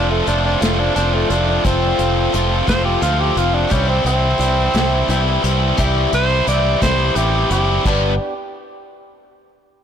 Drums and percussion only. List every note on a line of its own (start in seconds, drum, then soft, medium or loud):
0.27 closed hi-hat medium
0.62 snare loud
0.62 closed hi-hat medium
0.96 closed hi-hat medium
1.30 closed hi-hat medium
1.65 kick loud
1.65 closed hi-hat medium
1.99 closed hi-hat medium
2.34 closed hi-hat medium
2.68 kick medium
2.68 snare loud
2.68 closed hi-hat medium
3.02 closed hi-hat medium
3.37 closed hi-hat medium
3.71 kick loud
3.71 closed hi-hat medium
4.06 closed hi-hat medium
4.41 closed hi-hat medium
4.75 snare loud
4.75 closed hi-hat medium
5.09 closed hi-hat medium
5.44 closed hi-hat medium
5.79 kick loud
5.79 closed hi-hat loud
6.13 closed hi-hat medium
6.48 closed hi-hat medium
6.82 kick medium
6.82 snare loud
6.82 closed hi-hat loud
7.16 closed hi-hat medium
7.51 closed hi-hat medium
7.86 kick loud
7.86 crash medium